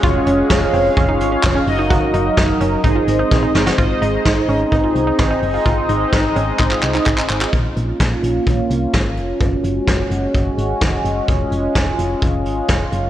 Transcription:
<<
  \new Staff \with { instrumentName = "Analog polysynth" } { \time 4/4 \key aes \mixolydian \tempo 4 = 128 <des' f' aes' des''>2.~ <des' f' aes' des''>8 <ees' ges' bes' ees''>8~ | <ees' ges' bes' ees''>2 <ees' aes' c'' ees''>2 | <ees' aes' c'' ees''>1~ | <ees' aes' c'' ees''>1 |
r1 | r1 | r1 | }
  \new Staff \with { instrumentName = "Synth arpeggio sound" } { \time 4/4 \key aes \mixolydian f'8 des'8 des'8 c'8 des'16 ees'8 des'8 des'8 ees'16 | ges'8 ees'8 ees'8 des'8 ees'16 f'8 ees'8 ees'8 ges'16 | f'8 ees'8 ees'8 des'8 ees'16 f'8 ees'8 ees'8 f'16 | f'8 ees'8 ees'8 des'8 ees'16 f'8 ees'8 ees'8 f'16 |
r1 | r1 | r1 | }
  \new Staff \with { instrumentName = "Analog synth pad" } { \time 4/4 \key aes \mixolydian << { f''2.~ f''8 <ges bes'>8~ | <ges bes'>2 ees'2 | ees'1~ | ees'1 |
f'1 | ges'1 | f'2.~ f'8 <ges bes'>8 | } \\ { <aes des'>2.~ <aes des'>8 ees'8~ | ees'2 <aes c'>2 | <aes c'>1~ | <aes c'>1 |
<bes des'>1 | <aes des'>1~ | <aes des'>2.~ <aes des'>8 ees'8 | } >> }
  \new Staff \with { instrumentName = "FM bass" } { \clef bass \time 4/4 \key aes \mixolydian f,,8 f,,8 f,,8 f,,8 f,,8 aes,,8 f,,8 ges,,8~ | ges,,8 ges,,8 ges,,8 ges,,8 aes,,8 aes,,8 bes,,8 ges,,8 | aes,,8 aes,,8 aes,,8 aes,,8 aes,,8 c,8 aes,,8 ges,,8 | aes,,8 aes,,8 aes,,8 aes,,8 aes,,8 c,8 aes,,8 aes,,8 |
bes,,8 bes,,8 bes,,8 bes,,8 bes,,8 c,8 aes,,8 f,,8 | ges,,8 ges,,8 ges,,8 ges,,8 ges,,8 aes,,8 f,,8 ges,,8 | f,,8 f,,8 f,,8 f,,8 f,,8 aes,,8 f,,8 ges,,8 | }
  \new DrumStaff \with { instrumentName = "Drums" } \drummode { \time 4/4 <hh bd>8 hh8 <hh bd sn>8 hho8 <hh bd>8 hh8 <hc hh bd sn>8 hho8 | <hh bd>8 hh8 <hh bd sn>8 hh8 <hh bd>8 hh8 <bd sn>8 sn16 sn16 | <hh bd>8 hh8 <hh bd sn>8 hho8 <hh bd>8 hh8 <hh bd sn>8 hho8 | <hh bd>8 hh8 <hh bd sn>8 hh8 <hc bd>16 hc16 hc16 hc16 <hc bd>16 hc16 hc16 hc16 |
<hh bd>8 hh8 <hh bd sn>8 hh8 <hh bd>8 hh8 <hh bd sn>8 hh8 | <hh bd>8 hh8 <hh bd sn>8 hh8 <hh bd>8 hh8 <hh bd sn>8 hh8 | <hh bd>8 hh8 <hh bd sn>8 hh8 <hh bd>8 hh8 <hh bd sn>8 hh8 | }
>>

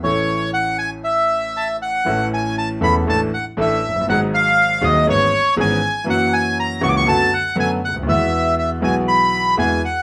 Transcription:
<<
  \new Staff \with { instrumentName = "Bandoneon" } { \time 4/4 \key a \major \tempo 4 = 119 cis''4 fis''8 gis''8 e''4 a''8 fis''8~ | fis''8 gis''8 a''8 b''8 a''8 fis''8 e''4 | fis''8 f''4 dis''8 cis''4 gis''4 | fis''8 gis''8 ais''8 cis'''32 d'''32 cis'''16 a''8 fis''8 gis''8 fis''8 |
e''4 e''8 gis''8 b''4 gis''8 fis''8 | }
  \new Staff \with { instrumentName = "Grand piano" } { \clef bass \time 4/4 \key a \major <a,, a, e a cis' a'>1 | <a,, a, e a cis' a'>4. <e,, e, e a cis' a'>8 <a,, a, e a d' a'>8 r8 <a,, a, e a d' a'>8 r32 f,,32 fis,,32 g,,32 | <gis,, gis, fis bis dis' gis'>4. <dis,, dis, fis bis dis' gis'>8 <gis,, gis, e b cis' gis'>8 r8 <gis,, gis, e b cis' gis'>8 r8 | <fis, e fis ais cis' fis'>4. <cis, cis e ais cis' fis'>8 <fis, d fis a b fis'>8 r8 <fis, d fis a b fis'>8 r32 cis,32 d,32 dis,32 |
<e, e gis b fis'>4. <b,, b, e gis b fis'>4. <e, e gis b fis'>8 r8 | }
>>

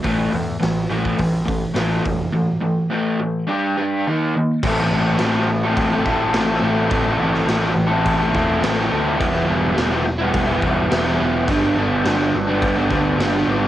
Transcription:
<<
  \new Staff \with { instrumentName = "Overdriven electric guitar" } { \time 4/4 \key a \minor \tempo 4 = 105 <a, e a>8 <a, e>8 <a, e>8 <a, e a>8 <a, e>8 <a, e>8 <a, e a>8 <a, e>8 | <a, e>8 <a, e>8 <a, e a>8 <a, e>8 <g d' g'>8 <g d' g'>8 <dis ais dis'>8 <dis ais>8 | <a, e a c' e' a'>16 <a c' e' a'>16 <a c' e' a'>8 <a, e a c' e' a'>16 <a c' e' a'>8 <a c' e' a'>8 <a c' e' a'>16 <a c' e' a'>8 <a, e a c' e' a'>16 <a c' e' a'>16 <a c' e' a'>8 | <a, e a c' e' a'>16 <a c' e' a'>16 <a c' e' a'>8 <a, e a c' e' a'>16 <a c' e' a'>8 <a c' e' a'>8 <a c' e' a'>16 <a c' e' a'>8 <a, e a c' e' a'>16 <a c' e' a'>16 <a c' e' a'>8 |
<e g b e'>16 <g b e'>16 <e g b e'>8 <e g b e'>16 <g b e'>8 <g b e'>8 <g b e'>16 <e g b e'>8 <e g b e'>16 <g b e'>16 <e g b e'>8 | <g, d g b d'>16 <g b d'>16 <d g b d'>8 <g, d g b d'>16 <g b d'>8 <g b d'>8 <g b d'>16 <d g b d'>8 <g, d g b d'>16 <g b d'>16 <d g b d'>8 | }
  \new Staff \with { instrumentName = "Picked electric bass" } { \clef bass \time 4/4 \key a \minor a,,8 e,8 a,,8 a,,8 a,,4 a,,8 f,,8 | r1 | a,,8 a,,8 a,,4 a,,8 a,,8 a,,8 a,,8 | a,,8 a,,8 a,,8 a,,8 a,,8 e,,8 a,,8 d,8 |
e,,8 e,,8 e,,4 e,,8 e,,8 e,,8 e,,8 | g,,8 g,,8 g,,8 g,,8 g,,8 d,8 g,,8 gis,,8 | }
  \new DrumStaff \with { instrumentName = "Drums" } \drummode { \time 4/4 <hho bd>8 hho8 <hho sn>8 hho16 bd16 <hho bd>8 <hho bd>8 <hho sn>8 <hho bd>8 | r4 r4 r4 r4 | <cymc bd>4 <cymc sn>4 <cymc bd>8 <bd sn>8 <cymc sn>4 | <cymc bd>8. sn16 <cymc sn>4 <cymc bd>8 <bd sn>8 <cymc sn>4 |
<cymc bd>4 <cymc sn>4 <cymc bd>8 bd8 <cymc sn>4 | <cymc bd>4 <cymc sn>4 <cymc bd>8 <bd sn>8 <cymc sn>4 | }
>>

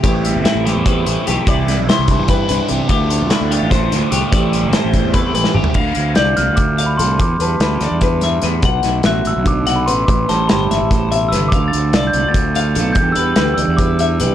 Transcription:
<<
  \new Staff \with { instrumentName = "Glockenspiel" } { \time 7/8 \key a \minor \tempo 4 = 146 r2. r8 | r2. r8 | r2. r8 | r2. r8 |
r4 g'''8 f'''8 d'''8. b''16 c'''8 | d'''8 a''8 b''2 r8 | r4 fis'''8 e'''8 d'''8. b''16 c'''8 | d'''8 a''8 b''2 e'''8 |
d'''8 a'''4 g'''8 a'''4. | g'''8 e'''4 e'''8 d'''4 r8 | }
  \new Staff \with { instrumentName = "Clean electric guitar" } { \time 7/8 \key a \minor g'4 e'8 g'8 b'4 g'8 | d''4 c''4 b'8 b'8 g'8 | g'4 e'8 g'8 c''4 g'8 | d''4 c''4 b'8 b'8 g'8 |
f''4 d''4 r8 f''8 a'8~ | a'8 b'8 b'8 d''8 b'8 e''8 b'8 | fis''4 e''4 r8 fis''8 b'8~ | b'8 c''8 c''8 e''8 c''8 e''8 b'8 |
f''4 d''4 r8 f''8 a'8~ | a'8 b'8 b'8 d''8 b'8 e''8 b'8 | }
  \new Staff \with { instrumentName = "Clean electric guitar" } { \time 7/8 \key a \minor << { <g g'>8 g8 a'4 g'4. | e'4 e'8 d'8 e'8 d'4 | e'8 c'8 e'8 e'8 e'8 r4 | g'8 g8 a'4 e'16 g'4~ g'16 |
r8 c'8 f'8 f'8 c'8 f'8 f'8 | r8 g8 e'16 g'16 d'2 | r8 a8 fis'8 d'2 | r8 g8 g'8 c'2 |
r8 c'8 f'8 f'8 c'8 f'8 f'8 | <e g d' g'>8 g8 g'8 d'8 g8 d'8 g'8 | } \\ { a,4. e4 e,4 | c4. e4 g,4 | d4. a4 a,4 | a,4. e4 e,4 |
d4. a4. a,8 | e,4. e8 f,8 g,8 a,8 | b,4. d8 d8 c8 b,8 | a,4. e8 a,8 b,8 c8 |
d4. a4. a,8 | e,4. e4. b,8 | } >> }
  \new Staff \with { instrumentName = "Overdriven electric guitar" } { \time 7/8 \key a \minor <a, e a c' e'>8 <a c' e'>8 <a, e a c' e'>8 <a c' e'>8 <e a c' e'>8 <a, e a c' e'>8 <e a c' e'>8 | <c e g c' e'>8 <g c' e'>8 <c e g c' e'>8 <g c' e'>8 <e g c' e'>8 <c e g c' e'>8 <e g c' e'>8 | <d a d' f'>8 <a d' f'>8 <d a d' f'>8 <a d' f'>8 <d a d' f'>8 <d a d' f'>8 <d a d' f'>8 | <a, e a c' e'>8 <a c' e'>8 <a, e a c' e'>8 <a c' e'>8 <e a c' e'>8 <a, e a c' e'>8 <e a c' e'>8 |
r2. r8 | r2. r8 | r2. r8 | r2. r8 |
r2. r8 | r2. r8 | }
  \new Staff \with { instrumentName = "Fingered electric bass" } { \clef bass \time 7/8 \key a \minor a,,8. g,,16 r16 a,,8 e,8. a,,16 r16 b,,16 r16 | c,8. b,,16 r16 c,8 g,8. c,16 r16 c,16 r16 | d,8. c,16 r16 d,8 a,,8. d,16 r16 c,16 r16 | a,,8. g,,16 r16 a,,8 e,8. a,,16 r16 g,,16 r16 |
d,8 d,8 c,8 c,16 d,4~ d,16 c,8 | e,8 e,8 d,8 d,16 e,4~ e,16 e,8 | b,,8 b,,8 a,,8 a,,16 b,,4~ b,,16 a,,8 | a,,8 a,,8 g,,8 g,,16 a,,4~ a,,16 g,,8 |
d,8 d,8 c,8 c,16 d,4~ d,16 b,,8 | e,8 e,8 d,8 d,16 e,4~ e,16 c,8 | }
  \new DrumStaff \with { instrumentName = "Drums" } \drummode { \time 7/8 <hh bd>8 hh8 <hh sn>8 <hh sn>8 <hh bd>8 hh8 hh8 | <hh bd>8 <hh sn>8 <hh sn>8 <hh bd>8 <hh bd>8 hh8 hh8 | <hh bd>8 hh8 <hh sn>8 hh8 <hh bd sn>8 <hh sn>8 hh8 | <hh bd>8 hh8 <hh sn>8 <hh bd>8 <hh bd>8 hh16 sn16 toml16 tomfh16 |
<cymc bd>8 hh8 <hh sn>8 <hh sn>8 <hh bd>8 hh8 hh8 | <hh bd>8 hh8 <hh sn>8 <hh sn>8 <hh bd sn>8 <hh sn>8 <hh sn>8 | <hh bd>8 <hh sn>8 <hh sn>8 hh8 <hh bd>8 <hh sn>8 hh8 | <hh bd>8 <hh sn>8 <hh sn>8 <hh sn>8 <hh bd sn>8 hh8 <hh sn>8 |
<hh bd>8 hh8 <hh sn>8 hh8 <hh bd>8 hh8 hh8 | <hh bd>8 hh8 <hh sn>8 hh8 <hh bd>8 hh8 hh8 | }
>>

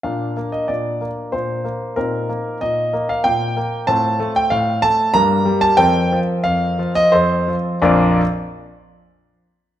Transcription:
<<
  \new Staff \with { instrumentName = "Grand piano" } { \time 3/4 \key bes \major \tempo 4 = 93 << { f''8. ees''16 d''4 c''4 | bes'4 ees''8. f''16 g''4 | a''8. g''16 f''8 a''8 bes''8. a''16 | g''4 f''8. ees''16 c''4 |
<bes,, f, f bes d' f' d''>8 r2 r8 | } \\ { <bes d'>2. | <c' ees'>2. | <c' f'>2 <bes bes'>4 | <c' bes'>2 <c' a'>4 |
r2. | } >> }
  \new Staff \with { instrumentName = "Grand piano" } { \clef bass \time 3/4 \key bes \major bes,8 bes8 bes,8 bes8 bes,8 bes8 | bes,8 bes8 bes,8 bes8 bes,8 bes8 | a,8 a8 a,8 a8 g,8 g8 | f,8 f8 f,8 f8 f,8 f8 |
r2. | }
>>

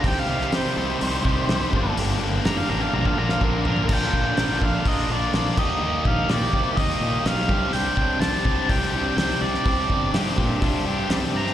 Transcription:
<<
  \new Staff \with { instrumentName = "Lead electric guitar" } { \time 4/4 \key c \minor \tempo 4 = 125 << { g''16 f''8. c''2. | r4 bes''16 f''16 bes''16 f''16 bes''16 f''16 bes''16 f''16 bes'4 | r1 | r1 |
r1 | r1 | } \\ { r1 | r2. r8 bes''8 | g''4. f''8 ees''8 d''4 ees''8~ | ees''8 f''8 d''4 ees''4 f''4 |
g''4 a''4 g''4 g''8 d''8~ | d''4 r2 r8 bes''8 | } >> }
  \new Staff \with { instrumentName = "Overdriven electric guitar" } { \time 4/4 \key c \minor r1 | r1 | r1 | r1 |
r1 | r4 <d' g'>8 <d' g'>8 <d' f'>8 g'8. r8. | }
  \new Staff \with { instrumentName = "Distorted electric guitar" } { \time 4/4 \key c \minor <c ees g c' g'>8 <c ees g c' g'>8 <c ees g c' g'>8 <c ees g c' g'>8 <c ees g c' g'>8 <c ees g c' g'>8 <c ees g c' g'>8 <g, d g bes d' g'>8 | <g, d g bes d' g'>8 <g, d g bes d' g'>8 <g, d g bes d' g'>8 <g, d g bes d' g'>8 <bes, d bes d' f'>8 <bes, d bes d' f'>8 <bes, d bes d' f'>8 <bes, d bes d' f'>8 | <bes, d bes d' f'>4 <d bes d' f'>4 <d bes d' f'>8 <bes d' f'>8 <bes, d bes d' f'>8 <ees bes ees' g'>8 | <ees bes ees' g'>4 <ees bes ees' g'>4 <ees bes ees' g'>8 <bes ees' g'>8 <ees bes ees' g'>8 <c g c' d' g'>8 |
<c g c' d' g'>4 <g c' d' g'>4 <g c' d' g'>8 <c' d' g'>8 <c g c' d' g'>8 <c' d' g'>8 | <c g c' d' g'>4 <g c' d' g'>4 <g c' d' g'>8 <c' d' g'>8 <c g c' d' g'>8 <c' d' g'>8 | }
  \new Staff \with { instrumentName = "Distorted electric guitar" } { \time 4/4 \key c \minor <c ees g c' g'>8 <c ees g c' g'>8 <c ees g c' g'>8 <c ees g c' g'>8 <c ees g c' g'>8 <c ees g c' g'>8 <c ees g c' g'>8 <g, d g bes d' g'>8 | <g, d g bes d' g'>8 <g, d g bes d' g'>8 <g, d g bes d' g'>8 <g, d g bes d' g'>8 <bes, d f bes d' bes'>8 <bes, d f bes d' bes'>8 <bes, d f bes d' bes'>8 <bes, d f bes d' bes'>8 | <bes, d f bes d' bes'>8 <f bes d' bes'>8 <bes, d f bes d' bes'>8 <f bes d' bes'>4 <f bes d' bes'>8 <f bes d' bes'>8 <ees g bes ees' g'>8 | <ees g bes ees' g'>8 <bes ees' g'>8 <ees g bes ees' g'>8 <bes ees' g'>4 <bes ees' g'>8 <g bes ees' g'>8 <c g c' d' g'>8 |
<c g c' d' g'>8 <c' d' g'>8 <c g c' d' g'>8 <c' d' g'>4 <c' d' g'>8 <g c' d' g'>4 | <c g c' d' g'>8 <c' d' g'>8 <c g c' d' g'>8 <c' d' g'>4 <c' d' g'>8 <g c' d' g'>4 | }
  \new Staff \with { instrumentName = "Fingered electric bass" } { \clef bass \time 4/4 \key c \minor c,8 c,8 c8 c,8 c,8 c,8 c,8 g,,8 | g,,8 g,,8 f,,8 a,,8 bes,,8 bes,,8 bes,,4 | bes,,8 bes,,8 bes,,8 bes,,8 bes,,8 bes,,8 bes,,8 ees,8 | ees,8 bes,,8 bes,8 c8 ees,8 bes,8 b,,8 c,8 |
c,8 c,8 c,8 c,8 c,8 c,8 c,8 c,8 | c,8 g,,8 g,8 bes,8 c,8 g,8 c,8 g,8 | }
  \new DrumStaff \with { instrumentName = "Drums" } \drummode { \time 4/4 <hho bd>8. sn16 <hho sn>4 hho8 bd8 <hho sn>8 bd8 | hho4 <hho sn>4 tommh16 bd8 sn16 bd8 tomfh16 tomfh16 | <cymc bd>8 bd8 <hho sn>8 bd8 <hho bd>16 sn8. <hho sn>8 <cymc bd>8 | r8 bd8 <hho sn>8 bd8 <hho bd>16 sn8. <hho sn>8 bd8 |
hho8 bd8 <hho sn>8 bd8 <hho bd>16 sn8. <hho sn>8. sn16 | <hho bd>8 bd8 <hho sn>8 bd8 <hho bd>4 <hho sn>8. sn16 | }
>>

